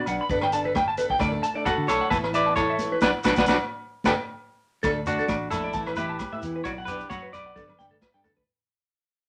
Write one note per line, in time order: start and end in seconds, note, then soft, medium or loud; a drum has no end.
0.06 0.17 B1 medium
0.06 0.22 F#3 medium
0.06 0.22 B3 medium
0.06 0.23 D4 medium
0.06 0.15 F#5 medium
0.06 closed hi-hat soft
0.06 low agogo medium
0.06 shekere medium
0.21 0.26 B5 medium
0.29 1.04 G1 medium
0.29 0.44 B3 medium
0.29 0.45 D4 medium
0.29 0.45 A4 medium
0.29 0.37 B4 medium
0.29 kick medium
0.29 muted conga soft
0.29 shekere medium
0.41 0.49 G5 medium
0.41 cross-stick medium
0.41 low agogo medium
0.52 0.65 B3 medium
0.52 0.66 D4 medium
0.52 0.63 A4 medium
0.52 0.60 A5 medium
0.52 closed hi-hat soft
0.52 shekere medium
0.64 0.79 D4 soft
0.64 0.77 A4 medium
0.64 0.71 B4 medium
0.75 0.83 G5 medium
0.75 kick medium
0.75 cross-stick medium
0.75 muted conga soft
0.75 high conga medium
0.75 low agogo medium
0.75 shekere medium
0.88 0.93 A5 medium
0.97 1.12 B3 medium
0.97 1.13 D4 medium
0.97 1.13 A4 medium
0.97 1.05 B4 medium
0.97 closed hi-hat soft
0.97 shekere medium
1.10 1.16 G5 medium
1.10 kick medium
1.18 1.39 D2 medium
1.18 1.32 F#3 medium
1.18 1.32 A3 medium
1.18 1.31 D4 medium
1.18 1.30 A4 loud
1.18 1.28 D5 medium
1.18 kick medium
1.18 cross-stick medium
1.18 muted conga soft
1.18 low agogo medium
1.18 shekere medium
1.31 1.46 A3 soft
1.31 1.45 D4 soft
1.31 1.45 A4 medium
1.43 1.50 A5 medium
1.43 closed hi-hat medium
1.43 muted conga soft
1.43 shekere medium
1.54 1.69 A3 soft
1.54 1.68 D4 soft
1.54 1.68 A4 soft
1.54 1.61 D5 medium
1.65 1.87 F#4 medium
1.65 1.88 A4 medium
1.65 1.73 F#5 medium
1.65 kick medium
1.65 cross-stick medium
1.65 high conga medium
1.65 low agogo medium
1.65 shekere medium
1.77 1.86 D3 medium
1.87 1.99 B1 medium
1.87 2.02 F#3 medium
1.87 2.03 A3 medium
1.87 2.03 D4 medium
1.87 2.03 A4 medium
1.87 2.10 A4 medium
1.87 2.11 C#5 medium
1.87 cross-stick medium
1.87 closed hi-hat soft
1.87 low agogo medium
1.87 shekere medium
2.01 2.07 F#5 medium
2.10 2.86 A1 loud
2.10 2.26 E3 medium
2.10 2.26 B3 medium
2.10 2.17 E4 medium
2.10 2.26 E4 medium
2.10 2.17 B4 medium
2.10 2.18 A5 medium
2.10 kick medium
2.10 muted conga soft
2.10 high conga medium
2.10 shekere medium
2.24 2.29 B4 medium
2.24 cross-stick medium
2.24 low agogo medium
2.33 2.47 B3 medium
2.33 2.45 E4 medium
2.33 2.56 B4 medium
2.33 2.55 D5 medium
2.33 2.41 E5 medium
2.33 muted steel-string acoustic guitar stroke medium
2.33 closed hi-hat soft
2.33 shekere medium
2.46 2.60 B3 soft
2.46 2.59 E4 medium
2.46 2.52 A5 medium
2.56 2.99 A4 medium
2.56 2.98 C#5 medium
2.56 kick medium
2.56 cross-stick medium
2.56 muted conga soft
2.56 low agogo medium
2.56 shekere medium
2.70 2.75 E5 medium
2.79 2.94 E3 medium
2.79 2.95 B3 medium
2.79 2.95 E4 medium
2.79 closed hi-hat medium
2.79 high conga medium
2.79 shekere medium
2.92 2.98 B4 medium
3.01 3.12 B1 medium
3.01 3.10 F#3 medium
3.01 3.10 B3 medium
3.01 3.10 D4 medium
3.01 3.10 F#4 medium
3.01 3.10 B4 loud
3.01 3.10 B4 medium
3.01 3.10 D5 medium
3.01 3.10 F#5 medium
3.01 kick medium
3.01 snare medium
3.01 high conga loud
3.01 low agogo loud
3.01 shekere loud
3.24 3.34 B1 medium
3.24 3.33 F#3 medium
3.24 3.33 B3 loud
3.24 3.33 D4 medium
3.24 3.33 F#4 medium
3.24 3.33 B4 medium
3.24 3.33 B4 loud
3.24 3.34 D5 loud
3.24 3.33 F#5 medium
3.24 kick medium
3.24 snare medium
3.24 high conga medium
3.24 low agogo loud
3.24 shekere loud
3.36 3.45 B1 medium
3.36 3.44 F#3 medium
3.36 3.44 B3 medium
3.36 3.44 D4 medium
3.36 3.44 D4 loud
3.36 3.44 F#4 medium
3.36 3.45 B4 medium
3.36 3.45 D5 medium
3.36 3.44 F#5 loud
3.36 kick medium
3.36 snare medium
3.36 high conga medium
3.36 low agogo medium
3.36 shekere medium
3.46 3.57 B1 medium
3.46 3.55 F#3 loud
3.46 3.55 B3 medium
3.46 3.55 D4 medium
3.46 3.56 D4 medium
3.46 3.56 F#4 medium
3.46 3.56 B4 medium
3.46 3.56 D5 medium
3.46 3.56 F#5 medium
3.46 kick medium
3.46 snare medium
3.46 high conga loud
3.46 low agogo loud
3.46 shekere medium
4.04 4.13 G1 medium
4.04 4.12 A3 medium
4.04 4.12 B3 medium
4.04 4.12 D4 medium
4.04 4.12 G4 medium
4.04 4.12 A4 medium
4.04 4.12 B4 medium
4.04 4.12 D5 medium
4.04 4.12 G5 medium
4.04 kick medium
4.04 snare medium
4.04 high conga loud
4.04 low agogo loud
4.04 shekere medium
4.83 5.21 D2 medium
4.83 4.98 F#3 medium
4.83 4.98 A3 medium
4.83 4.99 D4 medium
4.83 4.90 A4 medium
4.83 4.99 A4 loud
4.83 kick medium
4.83 cross-stick medium
4.83 muted conga soft
4.83 low agogo medium
4.83 shekere medium
5.06 5.19 F#3 medium
5.06 5.19 A3 medium
5.06 5.49 D4 medium
5.06 5.19 D4 medium
5.06 5.49 F#4 medium
5.06 5.18 A4 medium
5.06 muted clean electric guitar stroke medium
5.06 closed hi-hat soft
5.06 shekere loud
5.19 5.32 A4 soft
5.19 5.25 A4 medium
5.19 muted steel-string acoustic guitar stroke soft
5.19 shekere soft
5.28 5.48 A1 medium
5.28 5.35 D5 medium
5.28 kick medium
5.28 cross-stick medium
5.28 high conga medium
5.28 low agogo medium
5.28 shekere medium
5.50 5.71 A#1 medium
5.50 5.66 F#3 medium
5.50 5.66 A3 medium
5.50 5.67 D4 medium
5.50 5.94 E4 medium
5.50 5.98 A4 medium
5.50 5.67 A4 medium
5.50 cross-stick medium
5.50 closed hi-hat soft
5.50 muted conga soft
5.50 low agogo medium
5.50 shekere loud
5.64 5.70 D5 medium
5.73 5.93 A1 medium
5.73 5.89 E3 medium
5.73 5.89 B3 medium
5.73 5.90 E4 medium
5.73 5.81 A5 medium
5.73 kick medium
5.73 muted conga soft
5.73 shekere medium
5.86 5.93 B4 medium
5.86 cross-stick medium
5.86 low agogo medium
5.96 6.17 A1 medium
5.96 6.12 E3 medium
5.96 6.12 B3 medium
5.96 6.13 E4 medium
5.96 6.62 G4 medium
5.96 6.61 B4 medium
5.96 6.04 E5 medium
5.96 closed hi-hat soft
5.96 muted conga soft
5.96 high conga medium
5.96 shekere medium
6.09 6.15 A5 medium
6.19 kick medium
6.19 cross-stick medium
6.19 high conga medium
6.19 low agogo medium
6.19 shekere medium
6.32 6.41 A2 medium
6.32 6.43 B3 soft
6.32 6.43 E4 soft
6.32 6.38 E5 medium
6.42 6.62 E2 medium
6.42 6.57 E3 medium
6.42 6.58 B3 medium
6.42 6.58 E4 medium
6.42 closed hi-hat soft
6.42 shekere medium
6.56 6.61 B4 medium
6.64 7.03 B1 medium
6.64 6.80 F#3 medium
6.64 6.81 D4 medium
6.64 6.71 F#4 medium
6.64 6.70 C#5 medium
6.64 6.72 D5 medium
6.64 muted steel-string acoustic guitar stroke medium
6.64 kick medium
6.64 cross-stick medium
6.64 muted conga soft
6.64 low agogo medium
6.64 shekere medium
6.78 6.84 F#5 medium
6.85 7.01 F#3 medium
6.85 7.01 B3 medium
6.85 7.09 G4 medium
6.85 7.09 B4 medium
6.85 6.95 B4 medium
6.85 closed hi-hat soft
6.85 shekere medium
6.91 7.00 D4 medium
7.00 7.14 B3 soft
7.00 7.14 D4 soft
7.00 shekere soft
7.10 7.30 F#2 medium
7.10 7.33 F#4 medium
7.10 7.32 C#5 medium
7.10 7.17 F#5 medium
7.10 kick medium
7.10 cross-stick medium
7.10 high conga medium
7.10 low agogo medium
7.10 shekere medium
7.22 7.28 B4 medium
7.33 7.52 B1 medium
7.33 7.48 F#3 medium
7.33 7.49 D4 medium
7.33 8.21 B4 medium
7.33 7.40 D5 medium
7.33 8.20 D5 medium
7.33 muted steel-string acoustic guitar stroke medium
7.33 closed hi-hat soft
7.33 muted conga soft
7.33 low agogo medium
7.33 shekere medium
7.46 7.52 F#5 medium
7.55 7.75 G1 medium
7.55 7.71 G3 medium
7.55 7.71 B3 medium
7.55 7.71 D4 medium
7.55 7.63 A4 medium
7.55 7.71 A4 medium
7.55 kick medium
7.55 high tom soft
7.55 muted conga soft
7.55 shekere medium
7.68 muted clean electric guitar stroke medium
7.68 high tom soft
7.68 low agogo medium
7.78 7.98 G1 medium
7.78 7.93 G3 soft
7.78 7.94 B3 medium
7.78 7.94 D4 medium
7.78 7.95 A4 medium
7.78 7.86 G5 medium
7.78 muted conga soft
7.78 high conga medium
7.78 shekere medium
7.91 7.97 A4 medium
7.91 mid tom soft
8.01 8.09 B4 medium
8.01 kick medium
8.01 snare medium
8.01 high conga medium
8.01 low agogo medium
8.01 shekere medium
8.14 8.23 G2 medium
8.14 8.24 B3 soft
8.14 8.25 D4 soft
8.14 8.25 A4 medium
8.14 8.20 G5 medium
8.24 8.44 D2 medium
8.24 8.39 G3 medium
8.24 8.40 B3 medium
8.24 8.40 D4 medium
8.24 8.31 A4 medium
8.24 8.41 A4 medium
8.24 floor tom medium
8.24 shekere medium
8.37 8.42 B4 medium
8.37 kick medium